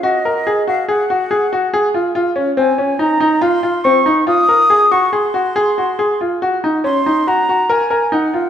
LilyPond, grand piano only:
\new Staff \with { instrumentName = "Grand piano" } { \time 5/4 \key bes \minor \tempo 4 = 141 ges'8 bes'8 aes'8 ges'8 aes'8 ges'8 aes'8 ges'8 aes'8 f'8 | f'8 des'8 c'8 des'8 ees'8 ees'8 f'8 f'8 c'8 ees'8 | f'8 bes'8 aes'8 ges'8 aes'8 ges'8 aes'8 ges'8 aes'8 f'8 | ges'8 ees'8 des'8 ees'8 ges'8 ges'8 bes'8 bes'8 ees'8 f'8 | }